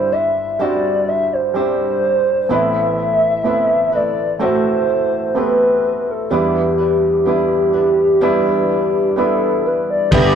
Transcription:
0.00 2.47 G1 soft
0.00 2.47 G2 medium
0.00 0.12 G3 medium
0.00 0.59 G3 medium
0.00 0.60 C4 medium
0.00 0.12 D4 soft
0.00 0.60 D4 medium
0.00 0.12 E4 medium
0.00 2.51 E4 medium
0.00 0.11 C5 medium
0.00 0.14 C5 loud
0.12 0.59 D4 soft
0.12 0.59 E4 soft
0.12 0.60 C5 soft
0.12 0.63 E5 medium
0.59 1.50 G3 medium
0.59 1.53 G3 medium
0.59 1.50 C4 medium
0.59 1.54 D4 medium
0.59 1.50 D4 medium
0.59 1.55 E4 medium
0.59 1.51 F#4 medium
0.59 1.56 C5 medium
0.59 1.10 D5 medium
1.08 1.35 E5 loud
1.33 1.56 C5 medium
1.54 2.45 G3 medium
1.54 2.50 G3 medium
1.54 2.45 C4 medium
1.54 2.46 D4 medium
1.54 2.50 D4 soft
1.54 2.50 E4 medium
1.54 2.46 G4 medium
1.54 2.50 C5 medium
1.59 2.53 C5 loud
2.49 6.27 A1 soft
2.49 3.45 A2 medium
2.49 6.27 A2 medium
2.49 4.40 E3 medium
2.49 3.40 A3 medium
2.49 3.43 A3 medium
2.49 3.41 B3 medium
2.49 3.41 C4 medium
2.49 3.44 C4 medium
2.49 3.45 E4 medium
2.49 3.41 E4 medium
2.49 3.46 B4 medium
2.49 3.96 E5 loud
3.44 4.35 A3 medium
3.44 3.93 A3 medium
3.44 4.35 B3 medium
3.44 4.36 C4 soft
3.44 3.92 C4 soft
3.44 4.36 E4 medium
3.44 3.92 E4 medium
3.44 3.91 B4 medium
3.92 4.39 A3 soft
3.92 4.40 C4 soft
3.92 4.40 E4 soft
3.92 4.40 B4 soft
3.92 4.42 D5 medium
4.39 5.35 A2 medium
4.39 6.30 E3 medium
4.39 5.31 A3 medium
4.39 5.34 A3 medium
4.39 5.31 C4 medium
4.39 5.35 C4 medium
4.39 5.36 E4 medium
4.39 5.32 F#4 medium
4.39 5.40 C5 medium
5.35 6.26 A3 medium
5.35 6.30 A3 medium
5.35 6.26 B3 medium
5.35 6.31 C4 soft
5.35 6.27 C4 medium
5.35 6.31 E4 medium
5.35 6.27 G4 medium
5.35 6.31 B4 medium
5.35 6.12 B4 medium
6.11 6.33 A4 medium
6.30 10.08 E2 medium
6.30 6.79 E3 medium
6.30 10.08 E3 medium
6.30 7.21 G3 medium
6.30 6.79 G3 medium
6.30 7.21 B3 medium
6.30 6.79 D4 medium
6.30 7.22 D4 medium
6.30 6.78 E4 medium
6.30 7.22 E4 medium
6.30 9.14 G4 medium
6.30 6.77 B4 medium
6.78 7.25 D4 soft
6.78 7.26 E4 soft
6.78 7.26 B4 soft
7.26 7.74 G3 soft
7.26 8.17 G3 medium
7.26 8.17 B3 soft
7.26 7.74 D4 medium
7.26 8.17 D4 medium
7.26 7.73 E4 medium
7.26 8.18 E4 medium
7.26 7.72 B4 medium
7.73 8.20 D4 soft
7.73 8.21 E4 soft
7.73 8.21 B4 medium
8.21 9.17 E3 medium
8.21 9.12 G3 medium
8.21 9.16 G3 medium
8.21 9.12 B3 medium
8.21 9.17 D4 medium
8.21 9.13 D4 medium
8.21 9.16 E4 medium
8.21 9.13 E4 medium
8.21 9.18 B4 medium
9.16 10.11 G3 medium
9.16 10.07 G3 medium
9.16 10.08 B3 medium
9.16 10.12 D4 medium
9.16 10.08 D4 medium
9.16 10.12 E4 medium
9.16 10.08 E4 medium
9.16 9.67 A4 medium
9.16 10.12 B4 medium
9.66 9.89 B4 medium
9.90 10.12 D5 medium
10.11 10.35 G1 loud
10.11 10.35 G2 medium
10.11 10.35 G3 medium
10.11 10.35 B3 medium
10.11 10.35 D4 medium
10.11 10.35 G4 medium
10.11 10.35 G4 loud
10.11 10.35 B4 medium
10.11 10.35 D5 medium
10.11 10.35 E5 loud
10.11 10.35 D6 medium
10.11 kick loud
10.11 crash medium

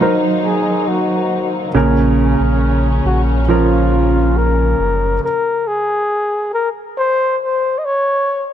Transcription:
0.00 1.77 D#3 medium
0.00 1.71 F#3 medium
0.00 1.77 F#3 medium
0.00 5.19 A#3 medium
0.00 0.02 D#4 medium
0.00 1.71 D#4 medium
0.00 1.66 D#4 medium
0.00 1.76 A#4 medium
0.00 0.17 A#4 medium
0.00 1.67 C5 medium
0.45 0.89 G#4 medium
0.88 1.53 F#4 medium
1.74 2.36 A#1 medium
1.74 3.01 A#2 medium
1.74 3.40 C#3 medium
1.74 5.20 C#3 medium
1.74 3.40 C#4 medium
1.74 5.20 C#4 medium
1.74 3.41 A#4 medium
2.40 3.01 A#1 medium
3.05 4.75 A#1 medium
3.05 3.22 F#4 medium
3.48 5.14 F3 medium
3.48 5.14 C#4 medium
3.48 4.39 F4 medium
3.48 5.15 A#4 medium
4.37 5.23 A#4 medium
4.79 5.20 F#1 medium
5.24 5.69 A#4 medium
5.68 6.53 G#4 medium
6.54 6.70 A#4 medium
6.98 7.38 C5 loud
7.43 7.80 C5 medium
7.79 7.87 D#5 medium
7.85 8.49 C#5 medium

